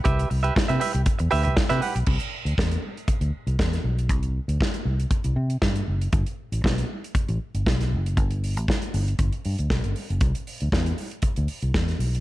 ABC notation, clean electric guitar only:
X:1
M:4/4
L:1/16
Q:1/4=118
K:Clyd
V:1 name="Clean electric guitar"
[GBe]2 z [GBe] z [GBe] [GBe]2 z2 [GBe] [GBe] z [GBe] [GBf] z | z16 | z16 | z16 |
z16 | z16 |]